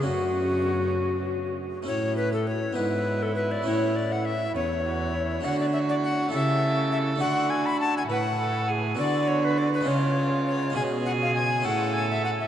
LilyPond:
<<
  \new Staff \with { instrumentName = "Recorder" } { \time 6/8 \key fis \minor \tempo 4. = 67 fis'2~ fis'8 r8 | \key a \major cis''8 b'16 a'16 cis''8 b'8. a'16 b'16 d''16 | cis''8 d''16 fis''16 e''8 cis''4. | fis''16 d''16 e''16 d''16 fis''8 e''4 e''8 |
fis''8 gis''16 b''16 a''16 gis''16 fis''4 r8 | \key cis \phrygian d''8 cis''16 b'16 d''16 b'16 cis''4 cis''8 | gis''8 fis''16 eis''16 gis''8 fis''8 gis''16 e''16 fis''16 e''16 | }
  \new Staff \with { instrumentName = "Violin" } { \time 6/8 \key fis \minor cis'2~ cis'8 r8 | \key a \major r4. e'4.~ | e'4. cis'8 fis'8 e'8 | fis'4. a'4. |
fis'4. b'8 a'8 gis'8 | \key cis \phrygian fis'4. eis'4. | gis'4. a'4. | }
  \new Staff \with { instrumentName = "Harpsichord" } { \time 6/8 \key fis \minor <a cis' fis'>2. | \key a \major <a cis' e'>4. <b d' e'>4. | <a cis' e'>2. | <a d' fis'>4. <a e' g'>4. |
<a d' fis'>2. | \key cis \phrygian <b fis'>4. <gis cis' eis'>4. | <gis cis' eis'>4. <a cis' fis'>4. | }
  \new Staff \with { instrumentName = "Harpsichord" } { \clef bass \time 6/8 \key fis \minor fis,2~ fis,8 r8 | \key a \major a,4. gis,4. | a,4. e,4. | d4. cis4. |
d4. a,4. | \key cis \phrygian d4. cis4. | b,4. a,4. | }
  \new Staff \with { instrumentName = "Cello" } { \clef bass \time 6/8 \key fis \minor fis,2~ fis,8 r8 | \key a \major a,4. gis,4. | a,4. e,4. | d4. cis4. |
d4. a,4. | \key cis \phrygian d4. cis4. | b,4. a,4. | }
>>